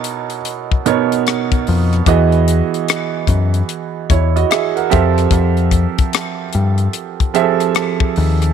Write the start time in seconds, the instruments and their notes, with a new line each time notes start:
Already playing: grand piano B2 B3 D#4 E4 A#4 C#5
0.04 closed hi-hat
0.30 closed hi-hat
0.45 closed hi-hat
0.71 kick
0.86 grand piano B2 B3 D#4 A#4 C#5, closed hi-hat
1.12 closed hi-hat
1.27 cross-stick, closed hi-hat
1.52 kick, closed hi-hat
1.67 picked electric bass F2, open hi-hat
1.93 cross-stick, closed hi-hat
2.06 picked electric bass E2, grand piano E3 B3 F#4 G#4 D#5, kick, closed hi-hat
2.32 closed hi-hat
2.48 closed hi-hat
2.74 closed hi-hat
2.88 cross-stick, closed hi-hat
3.27 picked electric bass F#2, kick, closed hi-hat
3.54 closed hi-hat
3.69 closed hi-hat
4.10 picked electric bass E2, grand piano E4 C#5, kick, closed hi-hat
4.36 grand piano F#4 D#5, closed hi-hat
4.50 grand piano G#4 E5, cross-stick, closed hi-hat
4.76 grand piano A#4 F#5, closed hi-hat
4.90 grand piano F3 C4 G4 A4 E5, kick, closed hi-hat
4.94 picked electric bass F2
5.18 cross-stick, closed hi-hat
5.31 picked electric bass F2, kick, closed hi-hat
5.57 closed hi-hat
5.71 kick, closed hi-hat
5.98 kick, closed hi-hat
6.13 cross-stick, closed hi-hat
6.53 picked electric bass G2, closed hi-hat
6.78 closed hi-hat
6.93 closed hi-hat
7.20 kick, closed hi-hat
7.34 grand piano F3 C4 G4 G#4 E5, closed hi-hat
7.42 grand piano A4
7.60 cross-stick, closed hi-hat
7.75 cross-stick, closed hi-hat
8.00 kick
8.16 picked electric bass D#2, open hi-hat
8.42 cross-stick, closed hi-hat